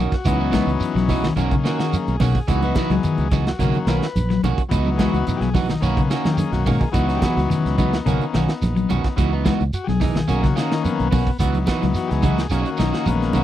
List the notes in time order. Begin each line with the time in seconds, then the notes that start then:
Already playing: D#3 A#3 C#4 F#4
0.00 D#4
0.12 F#4, muted fingered electric bass stroke, kick, snare, closed hi-hat, shekere
0.25 C#2 E3 F#3 B3 C#4 D#4 F#4, kick, closed hi-hat, shekere
0.39 B3 D#4 F#4, shekere
0.51 E3 G#3 B3 D#4 F#4, kick, snare, closed hi-hat, high conga, shekere
0.67 C#2, closed hi-hat, shekere
0.80 muted fingered electric bass stroke, closed hi-hat, shekere
0.95 B1 F#3, snare, closed hi-hat, shekere
1.09 E3 D#4 F#4, kick, open hi-hat, high conga, low conga, shekere
1.24 D#3, snare, shekere
1.36 B1 D#3 A#3 C#4 F#4, closed hi-hat, shekere
1.51 C#3, kick, closed hi-hat, high conga, shekere
1.64 D#3 A#3 C#4 F#4, snare, closed hi-hat, shekere
1.78 D#3 A#3 F#4 G#4, snare, closed hi-hat, shekere
1.93 closed hi-hat, high conga, shekere
2.08 B1, closed hi-hat, shekere
2.20 B1 B2 D#3 A#3 C#4 F#4, kick, snare, open hi-hat, high conga, low conga, shekere
2.35 kick, shekere
2.48 C#2 E3 F#3 B3 D#4 F#4, muted clean electric guitar stroke, kick, closed hi-hat, shekere
2.62 B3 D#4 F#4 B4, closed hi-hat, high conga, shekere
2.75 E3 B3 D#4 F#4, kick, snare, closed hi-hat, high conga, low conga, shekere
2.90 C#2 F#3 G#4, snare, closed hi-hat, shekere
3.03 D#3, closed hi-hat, shekere
3.18 C#2, closed hi-hat, shekere
3.31 C#3 E3 B3 D#4 F#4, kick, snare, closed hi-hat, high conga, low conga, shekere
3.47 F#4, snare, closed hi-hat, shekere
3.59 B1 C#3 D#3 A#3 C#4 F#4, snare, closed hi-hat, shekere
3.74 closed hi-hat, high conga, shekere
3.87 B1 D#3 A#3 C#4 F#4 B4, snare, closed hi-hat, shekere
4.02 snare, closed hi-hat, shekere
4.15 A#1, closed hi-hat, high conga, shekere
4.30 F#3, snare, closed hi-hat, shekere
4.43 B1 D#3 A#3 C#4 F#4, closed hi-hat, high conga, low conga, shekere
4.58 muted fingered electric bass stroke, kick, closed hi-hat, shekere
4.68 C#2 E3 F#3 B3 D#4 F#4, muted clean electric guitar stroke, kick, closed hi-hat, shekere
4.86 high conga, shekere
4.97 E3 G#3 B3 F#4 G#4, muted clean electric guitar stroke, kick, snare, closed hi-hat, high conga, shekere
5.13 C#2 F#4, closed hi-hat, shekere
5.27 D#4, muted fingered electric bass stroke, closed hi-hat, low conga, shekere
5.36 G4
5.41 B1 F#3 G#4, snare, closed hi-hat, shekere
5.54 E3 B3 D#4 F#4, kick, snare, open hi-hat, high conga, low conga, shekere
5.69 D#3 D#4, snare, shekere
5.80 B1 D#3 A#3 B3 C#4 F#4, closed hi-hat, shekere
5.97 C#3, kick, closed hi-hat, shekere
6.10 D#3 A#3 C#4 F#4, snare, closed hi-hat, shekere
6.24 D#3, snare, closed hi-hat, high conga, shekere
6.33 G4
6.37 G#4, closed hi-hat, high conga, shekere
6.52 B1 F#4, snare, closed hi-hat, low conga, shekere
6.65 G#2 B2 D#3 A#3 C#4 F#4, kick, open hi-hat, low conga, shekere
6.80 G#4, kick, low conga, shekere
6.92 C#2 E3 F#3 B3 D#4 F#4, kick, closed hi-hat, shekere
7.08 B3 C#4 D#4 F#4, snare, closed hi-hat, shekere
7.17 G4
7.21 E3 B3 F#4 G#4, muted clean electric guitar stroke, kick, snare, closed hi-hat, high conga, low conga, shekere
7.37 C#2 F#4, snare, closed hi-hat, shekere
7.49 D#3 C#4, snare, closed hi-hat, low conga, shekere
7.65 C#2, snare, closed hi-hat, shekere
7.77 C#3 B3 D#4 F#4, kick, closed hi-hat, high conga, low conga, shekere
7.93 snare, closed hi-hat, shekere
8.05 B1 C#3 D#3 A#3 C#4 F#4, snare, closed hi-hat, shekere
8.21 closed hi-hat, shekere
8.34 B1 D#3 A#3 C#4 F#4, snare, closed hi-hat, shekere
8.49 snare, closed hi-hat, shekere
8.62 A#1, snare, closed hi-hat, high conga, shekere
8.76 F#3, closed hi-hat, shekere
8.89 B1 D#3 C#4 F#4, closed hi-hat, high conga, low conga, shekere
9.04 muted fingered electric bass stroke, kick, snare, closed hi-hat, shekere
9.16 C#2 E3 F#3 B3 D#4 F#4, kick, closed hi-hat, shekere
9.33 B3 D#4, shekere
9.44 E3 G#3 B3 D#4 F#4, kick, snare, closed hi-hat, high conga, shekere
9.60 C#2, closed hi-hat, shekere
9.73 F#4, closed hi-hat, shekere
9.84 F#3 G4, shekere
9.89 B1 G#4, snare, closed hi-hat, high conga
10.00 E3 D#4, kick, snare, open hi-hat, high conga, low conga, shekere
10.15 D#3, snare, shekere
10.28 B1 D#3 A#3 C#4 F#4, muted clean electric guitar stroke, closed hi-hat, shekere
10.43 C#3 F#4, kick, snare, closed hi-hat, shekere
10.56 D#3 A#3 C#4 D#4 F#4, snare, closed hi-hat, shekere
10.71 D#3, snare, closed hi-hat, shekere
10.83 B3, closed hi-hat, high conga, shekere
11.00 B1, closed hi-hat, shekere
11.11 B1 B2 D#3 A#3 C#4 F#4, kick, open hi-hat, high conga, low conga, shekere
11.26 kick, shekere
11.39 C#2 E3 F#3 B3 D#4 F#4, muted clean electric guitar stroke, kick, closed hi-hat, shekere
11.53 closed hi-hat, high conga, shekere
11.66 E3 B3 D#4 F#4, kick, snare, closed hi-hat, high conga, shekere
11.82 C#2 F#3, snare, closed hi-hat, shekere
11.94 F#4, muted fingered electric bass stroke, snare, closed hi-hat, shekere
12.07 C#2 G4, snare, closed hi-hat, shekere
12.12 G#4
12.22 C#3 E3 B3 D#4 F#4, kick, closed hi-hat, high conga, low conga, shekere
12.37 snare, closed hi-hat, shekere
12.49 B1 D#3 A#3 C#4 F#4, muted clean electric guitar stroke, snare, closed hi-hat, shekere
12.64 F#4, closed hi-hat, shekere
12.77 B1 D#3 A#3 D#4 F#4, snare, closed hi-hat, shekere
12.92 A#3 C#4 F#4, snare, closed hi-hat, shekere
13.06 A#1 G#3 B3, closed hi-hat, high conga, shekere
13.20 snare, closed hi-hat, shekere
13.33 B1 A#3 C#4 F#4, closed hi-hat, high conga, low conga, shekere